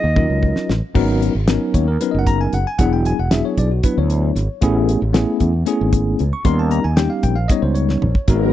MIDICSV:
0, 0, Header, 1, 6, 480
1, 0, Start_track
1, 0, Tempo, 524017
1, 872, Time_signature, 7, 3, 24, 8
1, 7813, End_track
2, 0, Start_track
2, 0, Title_t, "Flute"
2, 0, Program_c, 0, 73
2, 0, Note_on_c, 0, 75, 77
2, 640, Note_off_c, 0, 75, 0
2, 7813, End_track
3, 0, Start_track
3, 0, Title_t, "Tine electric piano"
3, 0, Program_c, 1, 4
3, 145, Note_on_c, 1, 54, 62
3, 151, Note_on_c, 1, 61, 55
3, 156, Note_on_c, 1, 63, 51
3, 158, Note_on_c, 1, 65, 58
3, 165, Note_on_c, 1, 70, 63
3, 658, Note_off_c, 1, 54, 0
3, 661, Note_off_c, 1, 61, 0
3, 663, Note_off_c, 1, 63, 0
3, 664, Note_off_c, 1, 65, 0
3, 668, Note_off_c, 1, 70, 0
3, 866, Note_on_c, 1, 59, 87
3, 867, Note_on_c, 1, 54, 88
3, 873, Note_on_c, 1, 61, 69
3, 877, Note_on_c, 1, 63, 84
3, 883, Note_on_c, 1, 70, 94
3, 1209, Note_off_c, 1, 59, 0
3, 1210, Note_off_c, 1, 54, 0
3, 1213, Note_off_c, 1, 61, 0
3, 1215, Note_off_c, 1, 63, 0
3, 1218, Note_off_c, 1, 70, 0
3, 1352, Note_on_c, 1, 54, 68
3, 1356, Note_on_c, 1, 59, 71
3, 1361, Note_on_c, 1, 61, 69
3, 1362, Note_on_c, 1, 63, 68
3, 1369, Note_on_c, 1, 70, 73
3, 1597, Note_on_c, 1, 73, 70
3, 1693, Note_off_c, 1, 54, 0
3, 1695, Note_off_c, 1, 59, 0
3, 1697, Note_off_c, 1, 61, 0
3, 1698, Note_off_c, 1, 63, 0
3, 1701, Note_off_c, 1, 70, 0
3, 1712, Note_off_c, 1, 73, 0
3, 1720, Note_on_c, 1, 70, 69
3, 1834, Note_off_c, 1, 70, 0
3, 1837, Note_on_c, 1, 54, 64
3, 1841, Note_on_c, 1, 59, 61
3, 1841, Note_on_c, 1, 71, 68
3, 1844, Note_on_c, 1, 61, 60
3, 1850, Note_on_c, 1, 63, 61
3, 1855, Note_on_c, 1, 70, 67
3, 1915, Note_off_c, 1, 71, 0
3, 1936, Note_on_c, 1, 75, 67
3, 2003, Note_off_c, 1, 75, 0
3, 2003, Note_on_c, 1, 78, 78
3, 2077, Note_off_c, 1, 78, 0
3, 2079, Note_on_c, 1, 82, 106
3, 2193, Note_off_c, 1, 82, 0
3, 2205, Note_on_c, 1, 80, 81
3, 2317, Note_off_c, 1, 80, 0
3, 2326, Note_on_c, 1, 78, 81
3, 2345, Note_off_c, 1, 54, 0
3, 2348, Note_off_c, 1, 59, 0
3, 2349, Note_off_c, 1, 61, 0
3, 2352, Note_off_c, 1, 63, 0
3, 2354, Note_off_c, 1, 70, 0
3, 2437, Note_off_c, 1, 78, 0
3, 2447, Note_on_c, 1, 80, 88
3, 2552, Note_on_c, 1, 78, 91
3, 2558, Note_off_c, 1, 80, 0
3, 2559, Note_on_c, 1, 54, 65
3, 2563, Note_on_c, 1, 59, 67
3, 2564, Note_on_c, 1, 62, 67
3, 2567, Note_on_c, 1, 64, 70
3, 2568, Note_on_c, 1, 68, 72
3, 2670, Note_off_c, 1, 78, 0
3, 2682, Note_on_c, 1, 79, 70
3, 2796, Note_off_c, 1, 79, 0
3, 2807, Note_on_c, 1, 80, 87
3, 2897, Note_off_c, 1, 54, 0
3, 2899, Note_off_c, 1, 59, 0
3, 2899, Note_off_c, 1, 62, 0
3, 2901, Note_off_c, 1, 64, 0
3, 2902, Note_off_c, 1, 68, 0
3, 2918, Note_off_c, 1, 80, 0
3, 2928, Note_on_c, 1, 78, 72
3, 3033, Note_on_c, 1, 76, 76
3, 3039, Note_off_c, 1, 78, 0
3, 3039, Note_on_c, 1, 54, 65
3, 3045, Note_on_c, 1, 59, 57
3, 3045, Note_on_c, 1, 62, 56
3, 3052, Note_on_c, 1, 64, 60
3, 3054, Note_on_c, 1, 68, 70
3, 3151, Note_off_c, 1, 76, 0
3, 3162, Note_on_c, 1, 73, 69
3, 3276, Note_off_c, 1, 73, 0
3, 3284, Note_on_c, 1, 74, 83
3, 3377, Note_off_c, 1, 54, 0
3, 3380, Note_off_c, 1, 62, 0
3, 3381, Note_off_c, 1, 59, 0
3, 3384, Note_off_c, 1, 64, 0
3, 3385, Note_off_c, 1, 68, 0
3, 3397, Note_off_c, 1, 74, 0
3, 3402, Note_on_c, 1, 66, 51
3, 3513, Note_on_c, 1, 54, 63
3, 3516, Note_off_c, 1, 66, 0
3, 3519, Note_on_c, 1, 71, 75
3, 3521, Note_on_c, 1, 59, 59
3, 3524, Note_on_c, 1, 62, 55
3, 3527, Note_on_c, 1, 64, 55
3, 3635, Note_off_c, 1, 71, 0
3, 3648, Note_on_c, 1, 73, 71
3, 4024, Note_off_c, 1, 54, 0
3, 4028, Note_off_c, 1, 59, 0
3, 4030, Note_off_c, 1, 62, 0
3, 4031, Note_off_c, 1, 64, 0
3, 4226, Note_on_c, 1, 57, 91
3, 4233, Note_on_c, 1, 59, 86
3, 4235, Note_on_c, 1, 61, 77
3, 4237, Note_on_c, 1, 64, 81
3, 4243, Note_on_c, 1, 68, 100
3, 4571, Note_off_c, 1, 57, 0
3, 4574, Note_off_c, 1, 59, 0
3, 4575, Note_off_c, 1, 61, 0
3, 4576, Note_off_c, 1, 64, 0
3, 4579, Note_off_c, 1, 68, 0
3, 4698, Note_on_c, 1, 57, 84
3, 4703, Note_on_c, 1, 59, 78
3, 4708, Note_on_c, 1, 61, 75
3, 4711, Note_on_c, 1, 64, 71
3, 4715, Note_on_c, 1, 68, 85
3, 4806, Note_off_c, 1, 73, 0
3, 5047, Note_off_c, 1, 57, 0
3, 5049, Note_off_c, 1, 59, 0
3, 5052, Note_off_c, 1, 61, 0
3, 5053, Note_off_c, 1, 64, 0
3, 5055, Note_off_c, 1, 68, 0
3, 5183, Note_on_c, 1, 57, 79
3, 5189, Note_on_c, 1, 59, 68
3, 5190, Note_on_c, 1, 61, 78
3, 5196, Note_on_c, 1, 64, 67
3, 5199, Note_on_c, 1, 68, 91
3, 5698, Note_off_c, 1, 57, 0
3, 5701, Note_off_c, 1, 59, 0
3, 5702, Note_off_c, 1, 61, 0
3, 5704, Note_off_c, 1, 64, 0
3, 5706, Note_off_c, 1, 68, 0
3, 5798, Note_on_c, 1, 85, 78
3, 5904, Note_on_c, 1, 55, 78
3, 5912, Note_on_c, 1, 59, 72
3, 5913, Note_off_c, 1, 85, 0
3, 5914, Note_on_c, 1, 61, 67
3, 5915, Note_on_c, 1, 84, 100
3, 5916, Note_on_c, 1, 63, 74
3, 5924, Note_on_c, 1, 70, 86
3, 6031, Note_off_c, 1, 84, 0
3, 6039, Note_on_c, 1, 81, 76
3, 6151, Note_on_c, 1, 82, 104
3, 6153, Note_off_c, 1, 81, 0
3, 6249, Note_off_c, 1, 55, 0
3, 6252, Note_off_c, 1, 59, 0
3, 6253, Note_off_c, 1, 61, 0
3, 6255, Note_off_c, 1, 63, 0
3, 6258, Note_off_c, 1, 70, 0
3, 6268, Note_on_c, 1, 80, 82
3, 6269, Note_off_c, 1, 82, 0
3, 6380, Note_on_c, 1, 55, 59
3, 6381, Note_on_c, 1, 79, 86
3, 6384, Note_on_c, 1, 59, 54
3, 6388, Note_off_c, 1, 80, 0
3, 6389, Note_on_c, 1, 61, 60
3, 6393, Note_on_c, 1, 63, 56
3, 6397, Note_on_c, 1, 67, 70
3, 6502, Note_on_c, 1, 77, 75
3, 6504, Note_off_c, 1, 79, 0
3, 6624, Note_off_c, 1, 77, 0
3, 6624, Note_on_c, 1, 79, 76
3, 6726, Note_off_c, 1, 55, 0
3, 6728, Note_off_c, 1, 59, 0
3, 6730, Note_off_c, 1, 61, 0
3, 6732, Note_off_c, 1, 63, 0
3, 6735, Note_off_c, 1, 67, 0
3, 6737, Note_on_c, 1, 77, 81
3, 6745, Note_off_c, 1, 79, 0
3, 6853, Note_on_c, 1, 75, 86
3, 6861, Note_off_c, 1, 77, 0
3, 6872, Note_on_c, 1, 55, 68
3, 6873, Note_on_c, 1, 59, 66
3, 6877, Note_on_c, 1, 61, 55
3, 6881, Note_on_c, 1, 63, 65
3, 6883, Note_on_c, 1, 73, 74
3, 6979, Note_off_c, 1, 75, 0
3, 6981, Note_on_c, 1, 72, 67
3, 7083, Note_off_c, 1, 73, 0
3, 7094, Note_on_c, 1, 73, 67
3, 7103, Note_off_c, 1, 72, 0
3, 7380, Note_off_c, 1, 55, 0
3, 7381, Note_off_c, 1, 59, 0
3, 7383, Note_off_c, 1, 61, 0
3, 7385, Note_off_c, 1, 63, 0
3, 7581, Note_on_c, 1, 56, 76
3, 7587, Note_on_c, 1, 59, 69
3, 7591, Note_on_c, 1, 63, 70
3, 7593, Note_on_c, 1, 66, 72
3, 7601, Note_on_c, 1, 70, 81
3, 7813, Note_off_c, 1, 56, 0
3, 7813, Note_off_c, 1, 59, 0
3, 7813, Note_off_c, 1, 63, 0
3, 7813, Note_off_c, 1, 66, 0
3, 7813, Note_off_c, 1, 70, 0
3, 7813, Note_off_c, 1, 73, 0
3, 7813, End_track
4, 0, Start_track
4, 0, Title_t, "String machine"
4, 0, Program_c, 2, 50
4, 7594, Note_on_c, 2, 59, 67
4, 7598, Note_on_c, 2, 70, 92
4, 7601, Note_on_c, 2, 54, 70
4, 7813, Note_off_c, 2, 54, 0
4, 7813, Note_off_c, 2, 59, 0
4, 7813, Note_off_c, 2, 70, 0
4, 7813, End_track
5, 0, Start_track
5, 0, Title_t, "Fretless electric bass"
5, 0, Program_c, 3, 35
5, 35, Note_on_c, 3, 39, 72
5, 234, Note_off_c, 3, 39, 0
5, 272, Note_on_c, 3, 37, 65
5, 473, Note_off_c, 3, 37, 0
5, 637, Note_on_c, 3, 33, 70
5, 735, Note_off_c, 3, 33, 0
5, 873, Note_on_c, 3, 32, 95
5, 1174, Note_off_c, 3, 32, 0
5, 1236, Note_on_c, 3, 32, 72
5, 1436, Note_off_c, 3, 32, 0
5, 1595, Note_on_c, 3, 39, 79
5, 1796, Note_off_c, 3, 39, 0
5, 1965, Note_on_c, 3, 30, 78
5, 2262, Note_off_c, 3, 30, 0
5, 2317, Note_on_c, 3, 30, 76
5, 2417, Note_off_c, 3, 30, 0
5, 2557, Note_on_c, 3, 28, 91
5, 2858, Note_off_c, 3, 28, 0
5, 2922, Note_on_c, 3, 28, 79
5, 3120, Note_off_c, 3, 28, 0
5, 3280, Note_on_c, 3, 35, 72
5, 3479, Note_off_c, 3, 35, 0
5, 3642, Note_on_c, 3, 38, 83
5, 3941, Note_off_c, 3, 38, 0
5, 3989, Note_on_c, 3, 32, 76
5, 4093, Note_off_c, 3, 32, 0
5, 4238, Note_on_c, 3, 33, 104
5, 4539, Note_off_c, 3, 33, 0
5, 4597, Note_on_c, 3, 33, 77
5, 4797, Note_off_c, 3, 33, 0
5, 4952, Note_on_c, 3, 40, 80
5, 5155, Note_off_c, 3, 40, 0
5, 5322, Note_on_c, 3, 32, 82
5, 5621, Note_off_c, 3, 32, 0
5, 5682, Note_on_c, 3, 37, 74
5, 5780, Note_off_c, 3, 37, 0
5, 5910, Note_on_c, 3, 39, 101
5, 6213, Note_off_c, 3, 39, 0
5, 6269, Note_on_c, 3, 39, 74
5, 6472, Note_off_c, 3, 39, 0
5, 6628, Note_on_c, 3, 34, 74
5, 6831, Note_off_c, 3, 34, 0
5, 6983, Note_on_c, 3, 37, 74
5, 7288, Note_off_c, 3, 37, 0
5, 7349, Note_on_c, 3, 34, 77
5, 7450, Note_off_c, 3, 34, 0
5, 7584, Note_on_c, 3, 32, 103
5, 7813, Note_off_c, 3, 32, 0
5, 7813, End_track
6, 0, Start_track
6, 0, Title_t, "Drums"
6, 147, Note_on_c, 9, 48, 54
6, 150, Note_on_c, 9, 36, 102
6, 239, Note_off_c, 9, 48, 0
6, 242, Note_off_c, 9, 36, 0
6, 391, Note_on_c, 9, 36, 66
6, 483, Note_off_c, 9, 36, 0
6, 512, Note_on_c, 9, 38, 59
6, 604, Note_off_c, 9, 38, 0
6, 637, Note_on_c, 9, 38, 75
6, 728, Note_off_c, 9, 38, 0
6, 873, Note_on_c, 9, 36, 93
6, 873, Note_on_c, 9, 49, 91
6, 964, Note_off_c, 9, 36, 0
6, 964, Note_off_c, 9, 49, 0
6, 1120, Note_on_c, 9, 42, 59
6, 1212, Note_off_c, 9, 42, 0
6, 1353, Note_on_c, 9, 38, 110
6, 1353, Note_on_c, 9, 42, 80
6, 1444, Note_off_c, 9, 38, 0
6, 1444, Note_off_c, 9, 42, 0
6, 1595, Note_on_c, 9, 36, 67
6, 1597, Note_on_c, 9, 42, 56
6, 1687, Note_off_c, 9, 36, 0
6, 1689, Note_off_c, 9, 42, 0
6, 1839, Note_on_c, 9, 42, 77
6, 1930, Note_off_c, 9, 42, 0
6, 2075, Note_on_c, 9, 36, 68
6, 2077, Note_on_c, 9, 42, 57
6, 2167, Note_off_c, 9, 36, 0
6, 2169, Note_off_c, 9, 42, 0
6, 2314, Note_on_c, 9, 42, 56
6, 2406, Note_off_c, 9, 42, 0
6, 2553, Note_on_c, 9, 42, 76
6, 2555, Note_on_c, 9, 36, 94
6, 2644, Note_off_c, 9, 42, 0
6, 2647, Note_off_c, 9, 36, 0
6, 2797, Note_on_c, 9, 42, 62
6, 2889, Note_off_c, 9, 42, 0
6, 3033, Note_on_c, 9, 38, 101
6, 3033, Note_on_c, 9, 42, 86
6, 3124, Note_off_c, 9, 38, 0
6, 3124, Note_off_c, 9, 42, 0
6, 3274, Note_on_c, 9, 42, 55
6, 3275, Note_on_c, 9, 36, 68
6, 3366, Note_off_c, 9, 42, 0
6, 3367, Note_off_c, 9, 36, 0
6, 3512, Note_on_c, 9, 42, 85
6, 3515, Note_on_c, 9, 36, 100
6, 3603, Note_off_c, 9, 42, 0
6, 3607, Note_off_c, 9, 36, 0
6, 3754, Note_on_c, 9, 42, 65
6, 3845, Note_off_c, 9, 42, 0
6, 3996, Note_on_c, 9, 38, 32
6, 3996, Note_on_c, 9, 42, 57
6, 4088, Note_off_c, 9, 38, 0
6, 4088, Note_off_c, 9, 42, 0
6, 4229, Note_on_c, 9, 42, 71
6, 4234, Note_on_c, 9, 36, 100
6, 4320, Note_off_c, 9, 42, 0
6, 4325, Note_off_c, 9, 36, 0
6, 4477, Note_on_c, 9, 42, 63
6, 4568, Note_off_c, 9, 42, 0
6, 4711, Note_on_c, 9, 38, 106
6, 4711, Note_on_c, 9, 42, 76
6, 4802, Note_off_c, 9, 38, 0
6, 4802, Note_off_c, 9, 42, 0
6, 4947, Note_on_c, 9, 42, 51
6, 4951, Note_on_c, 9, 36, 58
6, 5039, Note_off_c, 9, 42, 0
6, 5042, Note_off_c, 9, 36, 0
6, 5187, Note_on_c, 9, 42, 83
6, 5279, Note_off_c, 9, 42, 0
6, 5428, Note_on_c, 9, 42, 60
6, 5429, Note_on_c, 9, 36, 76
6, 5519, Note_off_c, 9, 42, 0
6, 5521, Note_off_c, 9, 36, 0
6, 5670, Note_on_c, 9, 42, 51
6, 5762, Note_off_c, 9, 42, 0
6, 5905, Note_on_c, 9, 42, 68
6, 5907, Note_on_c, 9, 36, 99
6, 5997, Note_off_c, 9, 42, 0
6, 5999, Note_off_c, 9, 36, 0
6, 6145, Note_on_c, 9, 42, 58
6, 6237, Note_off_c, 9, 42, 0
6, 6384, Note_on_c, 9, 38, 103
6, 6384, Note_on_c, 9, 42, 80
6, 6475, Note_off_c, 9, 38, 0
6, 6475, Note_off_c, 9, 42, 0
6, 6622, Note_on_c, 9, 42, 55
6, 6626, Note_on_c, 9, 36, 70
6, 6714, Note_off_c, 9, 42, 0
6, 6718, Note_off_c, 9, 36, 0
6, 6864, Note_on_c, 9, 38, 36
6, 6864, Note_on_c, 9, 42, 92
6, 6866, Note_on_c, 9, 36, 104
6, 6955, Note_off_c, 9, 38, 0
6, 6955, Note_off_c, 9, 42, 0
6, 6958, Note_off_c, 9, 36, 0
6, 7102, Note_on_c, 9, 42, 56
6, 7194, Note_off_c, 9, 42, 0
6, 7227, Note_on_c, 9, 38, 54
6, 7318, Note_off_c, 9, 38, 0
6, 7347, Note_on_c, 9, 45, 63
6, 7438, Note_off_c, 9, 45, 0
6, 7465, Note_on_c, 9, 36, 85
6, 7557, Note_off_c, 9, 36, 0
6, 7582, Note_on_c, 9, 42, 77
6, 7585, Note_on_c, 9, 36, 107
6, 7673, Note_off_c, 9, 42, 0
6, 7676, Note_off_c, 9, 36, 0
6, 7813, End_track
0, 0, End_of_file